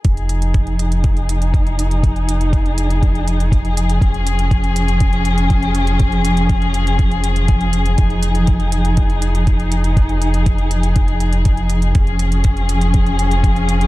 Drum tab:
HH |xxxxxxxxxxxxxxxx|xxxxxxxxxxxxxxxx|xxxxxxxxxxxxxxxx|xxxxxxxxxxxxxxxx|
BD |o---o---o---o---|o---o---o---o---|o---o---o---o---|o---o---o---o---|

HH |xxxxxxxxxxxxxxxx|xxxxxxxxxxxxxxxx|xxxxxxxxxxxxxxxx|
BD |o---o---o---o---|o---o---o---o---|o---o---o---o---|